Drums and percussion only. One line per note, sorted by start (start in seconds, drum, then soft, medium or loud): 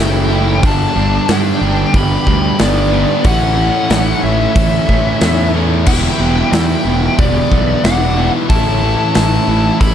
0.63 kick loud
0.63 open hi-hat medium
1.28 snare loud
1.28 open hi-hat medium
1.94 kick loud
1.94 open hi-hat medium
2.27 kick medium
2.59 snare loud
2.59 open hi-hat medium
3.24 kick loud
3.24 open hi-hat medium
3.90 snare loud
3.90 open hi-hat medium
4.56 kick loud
4.56 open hi-hat medium
4.89 kick medium
5.21 snare loud
5.21 open hi-hat medium
5.86 kick loud
5.86 crash loud
6.53 snare loud
6.53 open hi-hat medium
7.19 kick loud
7.19 open hi-hat medium
7.52 kick medium
7.84 snare loud
7.84 open hi-hat medium
8.50 kick loud
8.50 open hi-hat medium
9.15 snare loud
9.15 open hi-hat medium
9.81 kick loud
9.81 open hi-hat medium